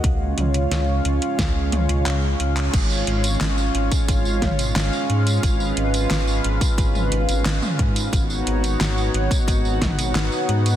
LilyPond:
<<
  \new Staff \with { instrumentName = "Analog synth pad" } { \time 4/4 \key cis \mixolydian \tempo 4 = 89 << { <gis cis' eis' eis''>1 | <gis cis' eis' eis''>1~ | <gis cis' eis' eis''>1 | <b dis' fis' fis''>1 | } \\ { cis''1 | cis''1 | b'1 | cis''1 | } >> }
  \new Staff \with { instrumentName = "Detuned saw bass" } { \clef bass \time 4/4 \key cis \mixolydian cis,8 cis,8 cis,8 cis,16 r16 cis,16 cis,16 cis,16 cis,16 cis,8 cis,8 | gis,,8 gis,,8 gis,,8 gis,,16 r16 gis,,16 gis,,16 gis,,16 gis,,16 gis,,16 r16 gis,8 | gis,,8 gis,,8 gis,,8 gis,,16 r16 gis,,16 gis,,16 gis,,16 gis,,16 gis,,16 r16 gis,8 | gis,,8 gis,,8 gis,,8 gis,,16 r16 gis,,16 gis,,16 gis,,16 gis,,16 gis,,16 r16 gis,8 | }
  \new DrumStaff \with { instrumentName = "Drums" } \drummode { \time 4/4 <hh bd>8 <hh toml>16 hh16 <hh sn>8 hh16 hh16 <hh bd sn>8 <hh toml>16 hh16 <hc hh>8 hh16 <hc hh>16 | <cymc hh bd tamb>16 tamb16 hh16 <hh tamb>16 <hc hh sn tamb>16 tamb16 hh16 <hh bd tamb>16 <hh bd tamb>16 tamb16 <hh bd sn toml>16 <hh tamb>16 <hc hh sn tamb>16 tamb16 hh16 <hh tamb>16 | <hh bd tamb>16 tamb16 hh16 <hh tamb>16 <hc hh sn tamb>16 tamb16 hh16 <hh bd tamb>16 <hh bd tamb>16 <tamb toml>16 hh16 <hh tamb>16 <hc hh sn tamb>16 <tamb toml>16 <hh bd>16 <hh tamb>16 | <hh bd tamb>16 tamb16 hh16 <hh tamb>16 <hc hh sn tamb>16 tamb16 hh16 <hh bd tamb>16 <hh bd tamb>16 tamb16 <hh bd sn toml>16 <hh tamb>16 <hc hh sn tamb>16 tamb16 hh16 <hh tamb>16 | }
>>